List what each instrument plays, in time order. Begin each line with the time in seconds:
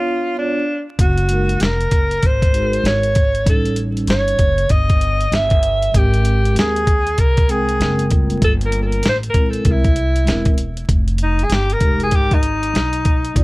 Already playing: vibraphone B3 D4 F4 C#5, alto saxophone F4
0.35 vibraphone B3 D4 F4 C#5, alto saxophone D4
0.99 upright bass F#1, alto saxophone F#4, kick, closed hi-hat
1.18 closed hi-hat
1.29 vibraphone G#3 D#4 F#4 A#4, closed hi-hat
1.49 closed hi-hat
1.60 upright bass F1, alto saxophone A#4, snare, closed hi-hat
1.81 closed hi-hat
1.91 upright bass F#1, kick, closed hi-hat
2.11 closed hi-hat
2.23 upright bass G#1, alto saxophone C5, kick, closed hi-hat
2.42 kick, closed hi-hat
2.52 vibraphone G#3 D#4 F#4 G#4, closed hi-hat
2.62 vibraphone A#4
2.73 closed hi-hat
2.84 upright bass G#1, alto saxophone C#5, snare, closed hi-hat
3.03 closed hi-hat
3.15 kick, closed hi-hat
3.35 closed hi-hat
3.44 upright bass A1, vibraphone G3 C#4 D#4 A4, kick, closed hi-hat
3.49 alto saxophone A4
3.65 closed hi-hat
3.76 closed hi-hat
3.97 closed hi-hat
4.07 upright bass G1, alto saxophone C#5, snare, closed hi-hat
4.28 closed hi-hat
4.39 upright bass F#1, kick, closed hi-hat
4.58 closed hi-hat
4.69 upright bass G1, alto saxophone D#5, kick, closed hi-hat
4.89 kick, closed hi-hat
5.01 closed hi-hat
5.21 closed hi-hat
5.32 upright bass G1, alto saxophone E5, snare, closed hi-hat
5.50 kick, closed hi-hat
5.63 closed hi-hat
5.82 closed hi-hat
5.92 upright bass G#1, vibraphone G#3 C4 G4 A#4, kick, closed hi-hat
5.97 alto saxophone G4
6.14 closed hi-hat
6.25 closed hi-hat
6.45 closed hi-hat
6.55 upright bass D#2, closed hi-hat
6.59 alto saxophone G#4, snare
6.76 closed hi-hat
6.87 kick, closed hi-hat
7.07 closed hi-hat
7.18 upright bass C2, alto saxophone A#4, kick, closed hi-hat
7.37 kick, closed hi-hat
7.47 vibraphone G#3 C4 A#4 G5, alto saxophone G#4, closed hi-hat
7.69 closed hi-hat
7.80 upright bass F#1, snare, closed hi-hat
7.99 closed hi-hat
8.09 vibraphone G3 A#3 F4 A4, kick, closed hi-hat
8.30 closed hi-hat
8.42 upright bass G1, alto saxophone A4, kick, closed hi-hat
8.61 closed hi-hat
8.66 alto saxophone A#4
8.72 closed hi-hat
8.82 alto saxophone A4 A#4
8.92 closed hi-hat
9.03 upright bass A1, snare, closed hi-hat
9.09 alto saxophone C5
9.23 closed hi-hat
9.30 vibraphone G#3, alto saxophone A#4
9.34 upright bass A#1, vibraphone C4 E4 A#4, kick, closed hi-hat
9.50 alto saxophone A4, closed hi-hat
9.65 upright bass C2, kick, closed hi-hat
9.71 alto saxophone E4
9.84 kick, closed hi-hat
9.96 closed hi-hat
10.16 closed hi-hat
10.24 upright bass E1, vibraphone G#3 C4 E4 A#4, snare, closed hi-hat
10.45 kick, closed hi-hat
10.58 closed hi-hat
10.77 closed hi-hat
10.88 upright bass F1, kick, closed hi-hat
11.08 closed hi-hat
11.18 closed hi-hat
11.23 alto saxophone D#4
11.39 closed hi-hat
11.44 alto saxophone G#4
11.50 upright bass G1, alto saxophone G4, snare, closed hi-hat
11.70 alto saxophone A#4, closed hi-hat
11.79 upright bass F1, vibraphone G#3 D#4 G4 A4, kick, closed hi-hat
11.89 vibraphone A#4
12.00 alto saxophone G#4, closed hi-hat
12.11 upright bass G#1, alto saxophone G4, kick, closed hi-hat
12.31 alto saxophone D#4, kick, closed hi-hat
12.43 closed hi-hat
12.63 closed hi-hat
12.74 upright bass B1, snare, closed hi-hat
12.93 closed hi-hat
13.05 kick, closed hi-hat
13.25 closed hi-hat
13.34 upright bass C2, vibraphone A#3 D#4 F4 D5, kick, closed hi-hat